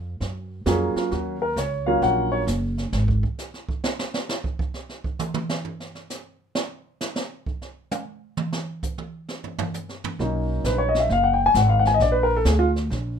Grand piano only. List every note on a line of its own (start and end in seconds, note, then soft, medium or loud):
0.66 1.35 F#3 medium
0.66 1.35 A#3 medium
0.66 1.36 C#4 medium
0.66 0.95 F4 medium
0.66 0.96 G#4 medium
0.96 1.11 F4 medium
1.12 1.41 F#4 medium
1.42 1.56 A#4 medium
1.58 1.87 C#5 medium
1.86 2.45 F#3 medium
1.86 2.44 A#3 medium
1.86 2.45 C#4 medium
1.86 2.45 F4 medium
1.86 2.01 F5 medium
2.03 2.32 F#5 loud
2.32 2.41 C#5 medium
10.20 11.46 F#3 soft
10.20 11.46 A#3 soft
10.20 11.47 C#4 soft
10.20 11.47 D#4 soft
10.66 10.80 B4 medium
10.78 10.93 C#5 medium
10.89 10.99 D#5 medium
11.00 11.08 E5 medium
11.12 11.26 F5 medium
11.24 11.39 F#5 medium
11.34 11.44 G5 medium
11.46 11.54 G#5 loud
11.57 11.71 F#5 medium
11.69 11.84 F5 medium
11.79 11.82 F#5 medium
11.87 11.96 G#5 medium
11.94 12.00 D#5 medium
12.02 12.16 D5 medium
12.12 12.28 B4 medium
12.23 12.34 A#4 medium
12.37 12.45 A4 medium
12.47 12.61 G#4 medium
12.59 12.68 F4 medium